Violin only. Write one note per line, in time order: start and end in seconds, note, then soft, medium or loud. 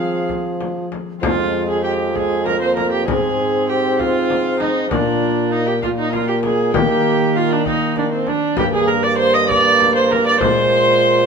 0.00 0.26 F5 medium
1.22 1.65 F5 medium
1.69 1.84 G#5 medium
1.84 1.92 G5 medium
2.15 2.47 G#5 medium
2.46 2.61 A#5 medium
2.62 2.76 C6 medium
2.76 2.91 A#5 medium
2.92 3.07 G5 medium
3.07 3.67 G#5 medium
3.69 3.99 G5 medium
3.99 4.62 F5 medium
4.61 4.90 D#5 medium
4.91 5.51 D5 medium
5.52 5.68 D#5 medium
5.67 5.81 G5 medium
5.82 5.88 F5 medium
5.98 6.14 D#5 medium
6.13 6.30 F5 medium
6.28 6.42 G5 medium
6.43 6.73 G#5 medium
6.74 7.34 G5 medium
7.36 7.53 F5 medium
7.51 7.68 D5 medium
7.66 7.96 D#5 medium
7.97 8.12 D5 medium
8.12 8.27 C5 medium
8.28 8.59 D5 medium
8.57 8.73 G5 medium
8.73 8.88 G#5 medium
8.88 8.94 A#5 medium
9.04 9.18 D6 medium
9.19 9.36 C6 medium
9.34 9.50 D#6 medium
9.49 9.95 D6 medium
9.95 10.10 C6 medium
10.10 10.25 A#5 medium
10.25 10.40 D6 medium
10.40 11.26 C6 loud